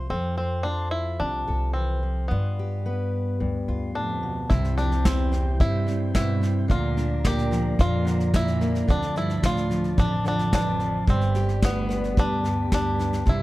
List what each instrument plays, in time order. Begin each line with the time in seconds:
Already playing: steel-string acoustic guitar F4
0.10 upright bass F2, steel-string acoustic guitar F3 A4, five-string banjo C4
0.37 five-string banjo C4, steel-string acoustic guitar C5
0.63 five-string banjo D4, steel-string acoustic guitar F4 C5
0.91 five-string banjo E4
1.20 upright bass C2, steel-string acoustic guitar C3, five-string banjo D4
1.48 upright bass C2, steel-string acoustic guitar A4
1.73 steel-string acoustic guitar E3, five-string banjo C4
2.03 steel-string acoustic guitar F3
2.28 steel-string acoustic guitar G2 F4, upright bass G2, five-string banjo B3
2.59 steel-string acoustic guitar G4
2.86 steel-string acoustic guitar B3 B4
3.40 upright bass D2, steel-string acoustic guitar G2
3.68 upright bass D2, steel-string acoustic guitar F4
3.95 cello F2, steel-string acoustic guitar A2, five-string banjo D4
4.23 steel-string acoustic guitar B2
4.49 upright bass C2, cello G2, steel-string acoustic guitar C3 C4, five-string banjo E4, tonewheel organ E4 C5 G5, kick, snare
4.64 snare
4.78 cello F2, five-string banjo D4, steel-string acoustic guitar G4, snare
4.92 snare
5.05 cello E2, five-string banjo C4, steel-string acoustic guitar E4, kick, snare
5.32 steel-string acoustic guitar C4, snare
5.60 upright bass G2, cello G2, steel-string acoustic guitar C4, five-string banjo E4, kick, snare
5.87 steel-string acoustic guitar G2, snare
6.14 cello G2, steel-string acoustic guitar B2, five-string banjo E4, kick, snare
6.41 steel-string acoustic guitar C3, snare
6.68 upright bass D2, cello A#2, steel-string acoustic guitar D3, tonewheel organ F3 D5 A#5, five-string banjo F4, kick, snare
6.97 steel-string acoustic guitar D4, snare
7.24 cello A#2, steel-string acoustic guitar A#3, five-string banjo G4, kick, snare
7.38 snare
7.51 steel-string acoustic guitar F3, snare
7.79 upright bass F2, cello A#2, steel-string acoustic guitar D4, five-string banjo F4, kick, snare
8.05 steel-string acoustic guitar D3, snare
8.20 snare
8.34 cello A#2, steel-string acoustic guitar D4, five-string banjo E4, kick, snare
8.48 snare
8.61 steel-string acoustic guitar A#3, snare
8.75 snare
8.87 upright bass D2, cello F2, steel-string acoustic guitar D3, five-string banjo D4, tonewheel organ A5, kick, snare
9.02 snare
9.16 cello G2, steel-string acoustic guitar F3, five-string banjo E4, snare
9.30 snare
9.43 cello A2, steel-string acoustic guitar F3, five-string banjo F4, kick, snare
9.57 snare
9.70 steel-string acoustic guitar F3, snare
9.84 snare
9.97 upright bass A1, cello F2, five-string banjo D4, steel-string acoustic guitar D5, kick, snare
10.25 cello F2, steel-string acoustic guitar D3, five-string banjo D4, snare
10.39 snare
10.52 cello F2, steel-string acoustic guitar E3, five-string banjo D4, kick, snare
10.79 steel-string acoustic guitar F3, snare
11.07 upright bass G1, steel-string acoustic guitar G2, cello G2, five-string banjo C4, tonewheel organ G4 B5, kick, snare
11.21 snare
11.35 steel-string acoustic guitar G4, snare
11.49 snare
11.62 cello D2, five-string banjo B3, steel-string acoustic guitar D4, kick, snare
11.89 steel-string acoustic guitar B3, snare
12.04 snare
12.17 upright bass D2, cello G2, five-string banjo D4, steel-string acoustic guitar B4, kick, snare
12.44 steel-string acoustic guitar G2, snare
12.72 cello G2, five-string banjo D4, steel-string acoustic guitar G4, kick, snare
12.99 steel-string acoustic guitar D4, snare
13.13 snare
13.26 upright bass C2, cello G2, steel-string acoustic guitar C3, five-string banjo E4, tonewheel organ E5 C6, kick, snare